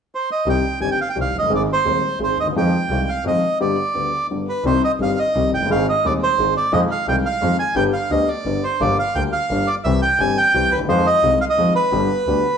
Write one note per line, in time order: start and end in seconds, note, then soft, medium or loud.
0.15 0.30 C5 soft
0.32 0.49 D#5 medium
0.46 0.61 C2 medium
0.46 0.61 C2 soft
0.46 0.61 C3 soft
0.46 0.61 D#3 soft
0.46 0.61 G3 soft
0.46 0.62 C4 soft
0.46 0.62 G4 soft
0.46 0.79 G5 medium
0.81 0.96 G1 soft
0.81 0.96 G2 soft
0.81 0.96 D#3 soft
0.81 0.96 G3 soft
0.81 0.96 C4 soft
0.81 0.97 G4 soft
0.81 0.90 G#5 medium
0.91 1.00 G5 medium
1.01 1.09 F5 medium
1.10 1.18 G5 medium
1.15 1.31 C2 soft
1.15 1.31 C3 soft
1.15 1.31 D#3 soft
1.15 1.31 G3 soft
1.15 1.31 C4 soft
1.15 1.31 G4 soft
1.21 1.37 F5 medium
1.34 1.43 F1 soft
1.34 1.51 F#1 soft
1.39 1.47 F#1 soft
1.39 1.53 D#5 medium
1.45 1.51 G1 soft
1.45 1.65 D#3 soft
1.50 1.65 G#1 medium
1.50 1.66 G#1 medium
1.50 1.65 G#2 medium
1.50 1.65 G#3 soft
1.50 1.65 C4 soft
1.50 1.66 G#4 soft
1.55 1.62 D5 medium
1.73 2.19 C5 medium
1.85 2.00 D#1 soft
1.85 2.00 D#2 soft
1.85 2.00 D#3 soft
1.85 2.00 G#3 soft
1.85 2.00 C4 soft
1.85 2.00 G#4 soft
2.20 2.35 G#1 soft
2.20 2.35 G#2 soft
2.20 2.35 D#3 soft
2.20 2.35 G#3 soft
2.20 2.35 C4 soft
2.20 2.35 G#4 soft
2.20 2.38 C5 medium
2.38 2.54 D#2 soft
2.38 2.47 D#5 medium
2.43 2.47 D2 soft
2.47 2.51 D#2 soft
2.52 2.56 E2 soft
2.52 2.70 F2 medium
2.56 2.70 F2 medium
2.56 2.70 D#3 medium
2.56 2.70 F3 medium
2.56 2.70 G#3 soft
2.56 2.70 C4 soft
2.56 2.70 F4 soft
2.56 3.10 G5 medium
2.89 3.04 C2 soft
2.89 3.05 C2 soft
2.89 3.05 C3 soft
2.89 3.05 D#3 soft
2.89 3.05 G#3 soft
2.89 3.05 C4 soft
2.89 3.05 F4 soft
3.09 3.24 F5 medium
3.24 3.39 F2 soft
3.24 3.40 F2 soft
3.24 3.40 D#3 soft
3.24 3.40 F3 soft
3.24 3.40 G#3 soft
3.24 3.40 C4 soft
3.24 3.40 F4 soft
3.24 3.59 D#5 medium
3.60 3.75 G1 soft
3.60 3.75 G2 soft
3.60 3.75 D3 soft
3.60 3.75 G3 soft
3.60 3.75 B3 soft
3.60 3.75 G4 soft
3.60 4.27 D5 soft
3.94 4.09 D2 soft
3.94 4.09 D3 soft
3.94 4.09 G3 soft
3.94 4.09 B3 soft
3.94 4.10 G4 soft
4.30 4.45 G1 soft
4.30 4.45 G2 soft
4.30 4.45 D3 soft
4.30 4.45 G3 soft
4.30 4.45 B3 soft
4.30 4.45 G4 soft
4.49 4.65 B4 soft
4.64 4.79 C2 medium
4.64 4.80 C2 medium
4.64 4.80 C3 medium
4.64 4.80 D#3 soft
4.64 4.80 G3 soft
4.64 4.80 C4 soft
4.64 4.80 G4 medium
4.64 4.82 C5 medium
4.84 4.92 D#5 medium
5.00 5.15 G1 soft
5.00 5.15 G2 soft
5.00 5.15 D#3 soft
5.00 5.15 G3 soft
5.00 5.15 C4 soft
5.00 5.15 G4 soft
5.00 5.19 F5 medium
5.19 5.51 D#5 medium
5.35 5.50 C2 soft
5.35 5.50 C3 soft
5.35 5.50 D#3 soft
5.35 5.50 G3 soft
5.35 5.50 C4 soft
5.35 5.50 G4 soft
5.52 5.69 F#1 soft
5.52 5.69 G5 medium
5.57 5.61 F1 soft
5.62 5.66 F#1 soft
5.62 5.70 G1 medium
5.70 5.84 G#1 medium
5.70 5.85 G#1 medium
5.70 5.84 G#2 medium
5.70 5.84 D#3 soft
5.70 5.84 G#3 soft
5.70 5.85 C4 soft
5.70 5.84 G#4 medium
5.70 5.87 F5 medium
5.89 6.06 D#5 medium
6.04 6.19 D#1 soft
6.04 6.19 D#2 soft
6.04 6.19 D#3 soft
6.04 6.19 G#3 soft
6.04 6.19 C4 soft
6.04 6.19 G#4 soft
6.04 6.13 D5 medium
6.23 6.54 C5 medium
6.39 6.53 G#1 soft
6.39 6.54 G#2 soft
6.39 6.53 D#3 soft
6.39 6.53 G#3 soft
6.39 6.53 C4 soft
6.39 6.54 G#4 soft
6.57 6.73 D5 medium
6.73 6.87 F2 medium
6.73 6.87 D#3 medium
6.73 6.87 F3 medium
6.73 6.87 G#3 soft
6.73 6.87 C4 soft
6.73 6.88 F4 medium
6.73 6.81 D#5 medium
6.91 7.07 F5 medium
7.07 7.22 C2 soft
7.07 7.22 C2 medium
7.07 7.22 C3 soft
7.07 7.22 D#3 soft
7.07 7.22 G#3 soft
7.07 7.22 C4 soft
7.07 7.22 F4 soft
7.07 7.16 G5 medium
7.26 7.57 F5 medium
7.42 7.56 F2 medium
7.42 7.56 F2 soft
7.42 7.56 D#3 soft
7.42 7.56 F3 soft
7.42 7.56 G#3 soft
7.42 7.56 C4 soft
7.42 7.56 F4 soft
7.59 7.75 G#5 medium
7.75 7.90 G1 medium
7.75 7.91 G1 medium
7.75 7.91 G2 medium
7.75 7.90 D3 medium
7.75 7.90 G3 soft
7.75 7.91 B3 medium
7.75 7.91 G4 medium
7.75 7.84 G5 medium
7.93 8.11 F5 medium
8.11 8.25 D2 soft
8.11 8.26 D2 soft
8.11 8.26 D3 soft
8.11 8.26 G3 soft
8.11 8.26 B3 soft
8.11 8.26 G4 soft
8.11 8.29 D#5 medium
8.28 8.65 D5 medium
8.46 8.61 G1 soft
8.46 8.61 G2 soft
8.46 8.61 D3 soft
8.46 8.61 G3 soft
8.46 8.61 B3 soft
8.46 8.61 G4 soft
8.64 8.82 C5 medium
8.80 8.95 G1 medium
8.80 8.96 G1 medium
8.80 8.96 G2 medium
8.80 8.95 D3 medium
8.80 8.96 G3 soft
8.80 8.96 A#3 soft
8.80 8.96 F4 medium
8.80 8.97 D5 medium
8.99 9.17 F5 medium
9.15 9.31 D2 soft
9.15 9.31 D3 soft
9.15 9.31 G3 soft
9.15 9.31 A#3 soft
9.15 9.31 F4 soft
9.15 9.23 G5 medium
9.33 9.69 F5 medium
9.51 9.66 G1 soft
9.51 9.66 G2 soft
9.51 9.66 D3 soft
9.51 9.66 G3 soft
9.51 9.66 A#3 soft
9.51 9.66 F4 soft
9.67 9.75 D5 medium
9.84 10.00 C2 medium
9.84 10.00 C3 medium
9.84 10.00 E3 medium
9.84 10.00 G3 soft
9.84 10.00 C4 medium
9.84 10.00 G4 medium
9.84 10.01 E5 medium
10.02 10.20 G5 medium
10.20 10.34 G1 soft
10.20 10.35 G1 soft
10.20 10.35 G2 soft
10.20 10.34 E3 soft
10.20 10.35 G3 soft
10.20 10.35 C4 soft
10.20 10.35 G4 soft
10.20 10.38 G#5 medium
10.38 10.73 G5 medium
10.54 10.69 C2 soft
10.54 10.69 C3 soft
10.54 10.69 E3 soft
10.54 10.69 G3 soft
10.54 10.69 C4 soft
10.54 10.69 G4 soft
10.71 10.87 D#2 soft
10.71 10.79 B4 medium
10.76 10.80 D2 soft
10.81 10.85 D#2 soft
10.85 10.89 E2 medium
10.85 11.03 F2 medium
10.85 11.03 D#3 medium
10.85 11.03 F3 medium
10.85 11.03 G#3 soft
10.85 11.03 C4 soft
10.85 11.03 F4 medium
10.85 11.07 C5 medium
11.07 11.39 D#5 medium
11.23 11.38 C2 soft
11.23 11.38 C3 soft
11.23 11.38 D#3 soft
11.23 11.38 G#3 soft
11.23 11.38 C4 soft
11.23 11.38 F4 soft
11.41 11.45 F5 medium
11.50 11.74 D#5 medium
11.58 11.72 F2 soft
11.58 11.73 F2 soft
11.58 11.73 D#3 soft
11.58 11.73 F3 soft
11.58 11.73 G#3 soft
11.58 11.73 C4 soft
11.58 11.73 F4 soft
11.75 12.58 B4 medium
11.92 12.07 G1 medium
11.92 12.07 G2 medium
11.92 12.07 D3 soft
11.92 12.07 G3 soft
11.92 12.07 B3 soft
11.92 12.07 G4 medium
12.27 12.42 D2 soft
12.27 12.43 D3 soft
12.27 12.42 G3 soft
12.27 12.43 B3 soft
12.27 12.42 G4 soft